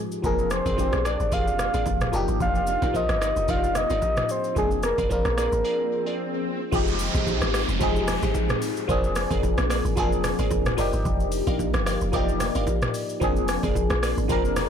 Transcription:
Already playing: F3 G#3 C4 D#4 F4 G4
0.12 shaker
0.22 F1 F3 A#3 C4 D4 G#4 A#4, kick, low conga, shaker
0.39 shaker
0.50 C5, cross-stick, low bongo, shaker
0.66 F1 G#4 A#4 D5, kick, low bongo, shaker
0.77 F3 A#3 C4 D4 G4, kick, high bongo, shaker
0.92 A#1, cross-stick, low bongo, shaker
1.05 G#4 A#4 D5, cross-stick, high bongo, shaker
1.20 G#1, shaker
1.32 F1 G#4 A#4 D5 F5, kick, low conga, shaker
1.48 shaker
1.59 cross-stick, high bongo, low conga, shaker
1.74 G#1 G#4 A#4 D5, low bongo, shaker
1.86 F1, kick, high bongo, shaker
2.01 cross-stick, mid tom, shaker
2.12 F1 F3 A#3 D4 D#4 G4, shaker
2.28 G1, shaker
2.40 F1 F5, kick, low conga, shaker
2.55 shaker
2.67 low bongo, shaker
2.82 A#1 D#4 F4 A#4 D5, kick, low bongo, shaker
2.93 F3 A#3 C4 D#4 F4 D#5, kick, high bongo, shaker
3.09 G1, cross-stick, low bongo, shaker
3.21 D#4 F4 A#4 D5, cross-stick, high bongo, shaker
3.36 F1, shaker
3.48 F1 D#4 F4 A#4 D5 F5, kick, low conga, shaker
3.64 shaker
3.75 D#5, cross-stick, high bongo, low conga, shaker
3.90 G1 D#4 F4 A#4 D5, low bongo, shaker
4.02 kick, high bongo, shaker
4.17 cross-stick, mid tom, shaker
4.29 C5, shaker
4.44 shaker
4.55 F1 F3 A#3 C4 D4 G#4, kick, swell, low conga, shaker
4.71 shaker
4.83 A#4, cross-stick, low bongo, shaker
4.98 F1 G#4 A#4 D5, kick, low bongo, shaker
5.09 F3 A#3 C4 D4 F4 A#4, kick, high bongo, shaker
5.25 A#1, cross-stick, low bongo, shaker
5.37 G#4 A#4 D5, cross-stick, high bongo, shaker
5.52 G#1, shaker
5.64 G#4 A#4 D5
6.06 G#4 A#4 D5
6.71 F1 F3 G#3 C4 D#4 G4, kick, downlifter, low conga, shaker
6.88 shaker
6.99 open hi-hat, shaker
7.14 A#1 G4 G#4 D#5, kick, low bongo, shaker
7.27 kick, high bongo, shaker
7.41 G#1, cross-stick, low bongo, shaker
7.54 G4 G#4 D#5, cross-stick, open hi-hat, shaker
7.69 F1, shaker
7.79 F1 F3 G#3 C4 D#4 G4 G#4 D#5, kick, low conga, shaker
7.96 shaker
8.08 cross-stick, open hi-hat, high bongo, low conga, shaker
8.22 G#1 G4 G#4 D#5, low bongo, shaker
8.34 kick, high bongo, shaker
8.49 cross-stick, mid tom, shaker
8.62 open hi-hat, shaker
8.77 shaker
8.88 F1 F3 A#3 C4 D4 G#4, kick, low conga, shaker
9.04 shaker
9.16 cross-stick, open hi-hat, shaker
9.31 F1 G#4 A#4 D5, kick, low bongo, shaker
9.43 kick, high bongo, shaker
9.58 A#1, cross-stick, low bongo, shaker
9.70 G#4 A#4 D5, cross-stick, open hi-hat, shaker
9.85 G#1, shaker
9.96 F1 F3 A#3 C4 D4 G#4 A#4 D5, kick, low conga, shaker
10.12 shaker
10.24 cross-stick, open hi-hat, high bongo, low conga, shaker
10.39 G#1 G#4 A#4 D5, low bongo, shaker
10.51 F1, kick, high bongo, shaker
10.66 cross-stick, mid tom, shaker
10.77 F1 F3 A#3 D4 D#4 G4, open hi-hat, shaker
10.93 G1, shaker
11.05 F1, kick, low conga, shaker
11.20 shaker
11.32 open hi-hat, shaker
11.47 A#1 A#4 D5 D#5 F5, kick, low bongo, shaker
11.59 kick, high bongo, shaker
11.74 G1, cross-stick, low bongo, shaker
11.86 A#4 D5 D#5 F5, cross-stick, open hi-hat, shaker
12.01 F1, shaker
12.12 F1 F3 A#3 D#4 G4 A#4 D5 D#5 F5, kick, low conga, shaker
12.29 shaker
12.40 cross-stick, open hi-hat, high bongo, low conga, shaker
12.55 G1 A#4 D5 D#5 F5, low bongo, shaker
12.67 kick, high bongo, shaker
12.82 cross-stick, mid tom, shaker
12.94 open hi-hat, shaker
13.09 shaker
13.20 F1 F3 A#3 C4 D4 G#4, kick, low conga, shaker
13.36 shaker
13.48 cross-stick, open hi-hat, shaker
13.63 F1 G#4 A#4 D5, kick, low bongo, shaker
13.75 kick, high bongo, shaker
13.90 A#1, cross-stick, low bongo, shaker
14.03 G#4 A#4 D5, cross-stick, open hi-hat, shaker
14.18 G#1, shaker
14.28 F1 F3 A#3 C4 D4 G#4 A#4 D5, kick, low conga, shaker
14.45 shaker
14.56 cross-stick, open hi-hat, high bongo, low conga, shaker

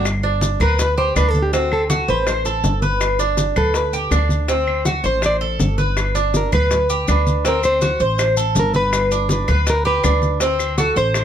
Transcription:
Already playing: G1
0.05 high bongo, high conga, claves, maracas
0.23 D4, high bongo, high conga
0.41 high bongo, high conga, maracas
0.60 D2 A#4 B4, high bongo, high conga, low conga, claves, maracas
0.79 B4, high bongo, high conga, maracas
0.97 G4 C5, high conga
1.15 D2 D4 B4, high bongo, low bongo, high conga, claves, maracas
1.31 A4, high bongo, high conga, maracas
1.42 G4
1.53 C4 F#4, high bongo, high conga, maracas
1.71 A4, high bongo, high conga, claves
1.90 F#4, high bongo, high conga, maracas
2.08 A1 B4 C5, high bongo, high conga, maracas
2.27 C5, high bongo, high conga, claves, maracas
2.45 A4, high conga, maracas
2.64 G1, high bongo, low bongo, high conga, maracas
2.82 B4, high bongo, high conga, maracas
3.00 high bongo, high conga, claves, maracas
3.19 D4, high bongo, high conga, maracas
3.37 high bongo, high conga, maracas
3.56 D2 A4 B4, high bongo, high conga, low conga, claves, maracas
3.74 B4, high bongo, high conga, maracas
3.93 G4, high conga, maracas
4.11 D2 D4, high bongo, low bongo, high conga, claves, maracas
4.29 high bongo, high conga, maracas
4.48 C4, high bongo, high conga, maracas
4.67 high bongo, high conga, claves
4.85 F#4, high bongo, high conga, maracas
5.03 A1 C5, high bongo, maracas
5.22 D5, high bongo, high conga, claves, maracas
5.41 A4, high conga
5.59 G1, high bongo, low bongo, high conga, maracas
5.78 B4, high bongo, high conga, maracas
5.97 high bongo, high conga, claves, maracas
6.15 D4, high bongo, high conga, maracas
6.34 A#4, high bongo, high conga, maracas
6.52 D2 B4, high bongo, high conga, low conga, claves, maracas
6.71 high bongo, high conga, low conga, maracas
6.90 G4, high conga, maracas
7.08 D2 D4 B4, high bongo, low bongo, high conga, claves, maracas
7.27 high bongo, high conga, maracas
7.45 C4 A#4, high bongo, high conga, maracas
7.63 C5, high bongo, high conga, claves, maracas
7.81 F#4, high bongo, high conga, maracas
8.00 A1 C5, high bongo, high conga, maracas
8.19 high bongo, high conga, claves, maracas
8.37 A4, high conga, maracas
8.55 G1, high bongo, low bongo, high conga, maracas
8.60 A#4
8.74 B4, high bongo, high conga, maracas
8.92 high bongo, high conga, claves, maracas
9.11 D4, high bongo, high conga, maracas
9.29 B4, high bongo, high conga, maracas
9.48 D2 B4, high bongo, high conga, low conga, claves, maracas
9.66 A#4, high bongo, high conga, maracas
9.85 G4 B4, high conga
10.04 D2 D4, high bongo, low bongo, high conga, claves, maracas
10.22 high bongo, high conga, maracas
10.40 C4, high bongo, high conga, maracas
10.59 high bongo, high conga, claves, maracas
10.78 F#4 A4, high bongo, high conga, maracas
10.96 A1 C5, high bongo, high conga, maracas
11.14 high bongo, high conga, claves, maracas

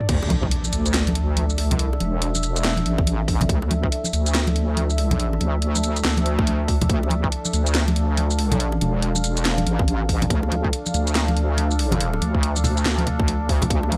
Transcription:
0.01 mid tom
0.09 D2 D4 A4 E5, kick, closed hi-hat, crash, impact
0.23 high bongo
0.30 closed hi-hat, high conga
0.43 kick
0.51 closed hi-hat
0.64 high conga, shaker
0.73 D2, closed hi-hat, shaker
0.86 closed hi-hat, shaker
0.94 snare, clap, closed hi-hat
1.07 closed hi-hat, high conga
1.15 closed hi-hat
1.37 closed hi-hat, high conga
1.50 shaker
1.58 C#2, open hi-hat, high bongo
1.71 closed hi-hat, high conga, low conga
1.79 closed hi-hat
1.87 C2
1.93 high bongo
2.00 E1, closed hi-hat, high conga
2.22 closed hi-hat
2.35 high conga, shaker
2.43 closed hi-hat, shaker
2.56 closed hi-hat, shaker
2.65 snare, clap, closed hi-hat
2.77 closed hi-hat, high conga
2.86 A1, closed hi-hat
2.98 kick
3.07 closed hi-hat, high conga
3.28 kick, open hi-hat
3.41 closed hi-hat, high conga, low conga
3.49 D2, kick, closed hi-hat
3.62 high bongo
3.71 closed hi-hat, high conga
3.83 kick
3.92 closed hi-hat
4.04 high conga, shaker
4.13 D2, closed hi-hat, shaker
4.26 closed hi-hat, shaker
4.35 snare, clap, closed hi-hat
4.47 closed hi-hat, high conga
4.56 closed hi-hat
4.77 closed hi-hat, high conga
4.90 shaker
4.98 open hi-hat, high bongo
5.11 closed hi-hat, high conga, low conga
5.20 closed hi-hat
5.33 high bongo
5.41 D2, closed hi-hat, high conga
5.62 closed hi-hat
5.75 high conga, shaker
5.84 closed hi-hat, shaker
5.96 closed hi-hat, shaker
6.05 D2, snare, clap, closed hi-hat
6.17 closed hi-hat, high conga
6.26 closed hi-hat
6.39 kick
6.47 closed hi-hat, high conga
6.68 kick, open hi-hat
6.81 closed hi-hat, high conga, low conga
6.89 D2 F5, kick, closed hi-hat
7.03 high bongo
7.10 closed hi-hat, high conga
7.24 kick
7.32 closed hi-hat
7.45 high conga, shaker
7.53 D2, closed hi-hat, shaker
7.67 closed hi-hat, shaker
7.75 snare, clap, closed hi-hat
7.88 closed hi-hat, high conga
7.96 closed hi-hat
8.17 closed hi-hat, high conga
8.30 shaker
8.39 open hi-hat, high bongo
8.52 closed hi-hat, high conga, low conga
8.60 closed hi-hat
8.72 high bongo
8.81 E1, closed hi-hat, high conga
9.02 closed hi-hat
9.15 high conga, shaker
9.24 closed hi-hat, shaker
9.37 closed hi-hat, shaker
9.45 snare, clap, closed hi-hat
9.58 closed hi-hat, high conga
9.66 A1, closed hi-hat
9.79 kick
9.88 closed hi-hat, high conga
10.09 kick, open hi-hat
10.22 closed hi-hat, high conga, low conga
10.30 D2, kick, closed hi-hat
10.43 high bongo
10.52 closed hi-hat, high conga
10.65 kick
10.73 closed hi-hat
10.86 high conga, shaker
10.94 D2, closed hi-hat, shaker
11.07 closed hi-hat, shaker
11.15 snare, clap, closed hi-hat
11.28 closed hi-hat, high conga
11.37 closed hi-hat
11.57 closed hi-hat, high conga
11.71 shaker
11.79 open hi-hat, high bongo
11.92 closed hi-hat, high conga, low conga
12.01 closed hi-hat
12.13 high bongo
12.22 D2, closed hi-hat, high conga
12.35 kick
12.43 closed hi-hat
12.56 high conga, shaker
12.64 open hi-hat, low conga, shaker
12.77 closed hi-hat, shaker
12.86 D2, snare, clap, closed hi-hat
12.98 closed hi-hat, high conga
13.07 closed hi-hat, low conga
13.20 kick
13.27 closed hi-hat, high conga
13.49 kick, open hi-hat
13.62 closed hi-hat, high bongo, high conga, low conga
13.70 D2 D5, kick, closed hi-hat
13.83 high bongo
13.92 closed hi-hat, high conga

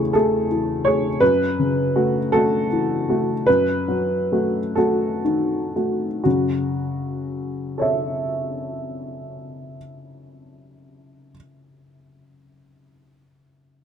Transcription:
Already playing: E2 C#3 A3 G#4 C#5
0.13 A3 G#4 A4
0.51 E3
0.85 A3 G#4 C#5
1.20 F#2 B4
1.59 C#3
1.96 A3 F#4
2.32 A3 F#4 A4
2.72 E3
3.09 A3 F#4
3.46 F#2 B4
3.88 F#3
4.32 A3 F#4
4.75 A3 F#4 A4
5.25 D#3
5.76 A3 F#4
6.24 F#2 C#3 F#4
7.78 A4 C#5 E5

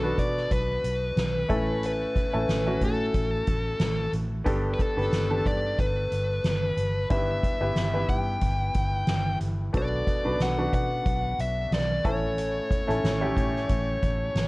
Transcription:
Already playing: B1 B2 B3 D4 F#4 A4 B4
0.02 B3 D4 F#4 B4
0.18 B2 D5, kick, closed hi-hat
0.37 snare
0.51 B1 B4, kick, closed hi-hat
0.84 B1, closed hi-hat
1.16 B1, snare, closed hi-hat
1.48 A1 A2 A3 C#4 E4 A4, kick, closed hi-hat
1.83 B4, closed hi-hat
2.15 kick, closed hi-hat
2.33 A1 A3 C#4 E4 A4
2.49 A1, snare, closed hi-hat
2.66 A3 C#4 E4 F#4
2.81 A2 A4, kick, closed hi-hat
3.14 A1, kick, closed hi-hat
3.47 A1, kick, closed hi-hat
3.80 A1, snare, closed hi-hat
4.13 A1, closed hi-hat
4.45 G1 G2 B3 D4 G4 A4, kick, closed hi-hat
4.74 B4
4.79 A4, kick, closed hi-hat
4.97 G1 B3 D4 G4 B4, closed hi-hat
5.12 G1, snare, closed hi-hat
5.29 B3 D4 G4 A4
5.45 G2 D5, kick, closed hi-hat
5.78 G1 B4, kick, closed hi-hat
6.12 G1, closed hi-hat
6.44 G1, snare, closed hi-hat
6.77 G1, closed hi-hat
7.10 G1 G2 B3 E4 G4 B4 E5, kick, closed hi-hat
7.43 kick, closed hi-hat
7.61 G1 B3 E4 G4 B4
7.75 G1, snare, closed hi-hat
7.94 B3 E4 G4 B4
8.09 G2 G5, kick, closed hi-hat
8.41 G1, kick, closed hi-hat
8.74 G1, kick, closed hi-hat
9.07 G1, snare, closed hi-hat
9.40 G1, closed hi-hat
9.73 B1 B2 B3 D4 F#4 A4, kick, closed hi-hat
9.77 D5
10.07 kick, closed hi-hat
10.24 B1 B3 D4 F#4 B4
10.40 B1 F#5, snare, closed hi-hat
10.58 B3 D4 F#4 B4
10.73 B2 F#5, kick, closed hi-hat
11.06 B1, kick, closed hi-hat
11.39 B1 E5, closed hi-hat
11.71 B1 D5, snare, closed hi-hat
12.04 A1 A2 A3 C#4 E4 A4 C#5, kick, closed hi-hat
12.38 closed hi-hat
12.71 kick, closed hi-hat
12.87 A1 A3 C#4 E4 A4, closed hi-hat
13.04 A1, snare, closed hi-hat
13.21 A3 C#4 E4 G4
13.37 A2, kick, closed hi-hat
13.56 snare
13.69 A1, kick, closed hi-hat
14.03 A1, kick, closed hi-hat
14.35 A1, snare, closed hi-hat

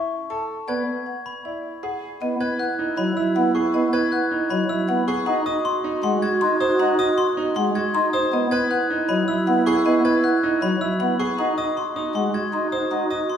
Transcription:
Already playing: E4 E5
0.30 A4 A5
0.68 B3 B4 D5 G#6
1.06 F#5
1.26 B5
1.45 E4 D5
1.83 G#4 F#5
2.21 B3 E4 D#5
2.40 B4 G#6
2.59 F#5 F#6
2.79 D#4
2.97 F#3 D#5 B5
3.17 E4 E6
3.36 B3 F#5
3.55 G#4 C#6
3.74 B3 D#5
3.93 B4 G#6
4.12 F#5 F#6
4.31 D#4
4.50 F#3 D#5 B5
4.69 E4 E6
4.88 B3 F#5
5.08 G#4 C#6
5.26 D#4 F#4 F#5
5.46 D#5 D#6
5.65 C6
5.84 D#4
6.03 G#3 F#5 C6
6.22 F#4 G#6
6.41 D#4 C6
6.60 C5 D#6
6.80 D#4 F#5
6.99 D#5 D#6
7.18 C6
7.37 D#4
7.56 G#3 F#5 C6
7.75 F#4 G#6
7.94 D#4 C6
8.13 C5 D#6
8.32 B3 E4 D#5
8.51 B4 G#6
8.71 F#5 F#6
8.90 D#4
9.09 F#3 D#5 B5
9.28 E4 E6
9.47 B3 F#5
9.66 G#4 C#6
9.86 B3 D#5
10.05 B4 G#6
10.24 F#5 F#6
10.43 D#4
10.62 F#3 D#5 B5
10.81 E4 E6
11.00 B3 F#5
11.20 G#4 C#6
11.39 D#4 F#4 F#5
11.58 D#5 D#6
11.77 C6
11.96 D#4 D#6
12.15 G#3 F#5 C6
12.34 F#4 G#6
12.53 D#4 C6
12.72 C5 D#6
12.91 D#4 F#5
13.10 D#5 D#6
13.29 C6

